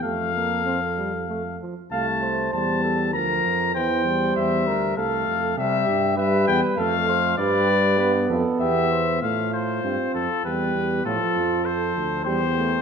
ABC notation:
X:1
M:3/4
L:1/8
Q:1/4=98
K:F
V:1 name="Trumpet"
f4- f z | a2 a2 b2 | g2 e2 f2 | e2 e g f2 |
d3 z e2 | f c2 A =B2 | A2 c2 c2 |]
V:2 name="Flugelhorn"
A4- A z | f c2 A B2 | c3 B A2 | G2 =B2 A c |
=B2 B A G c | F4 G2 | F2 A2 G2 |]
V:3 name="Trombone" clef=bass
A, B, C G, A, F, | A,2 G,2 F,2 | E, G,3 A,2 | G,2 G,2 A,2 |
G,2 =B,4 | A,2 C2 G,2 | F,4 G, A, |]
V:4 name="Bass trombone" clef=bass
F,,4- F,, z | C,,2 E,,2 D,, F,, | E,,2 E,, D,, C,, F,, | C, G,,2 E,, F,,2 |
G,,3 F,, E,,2 | A,,2 G,, F,, E,, E,, | A,, F,,2 D,, E,,2 |]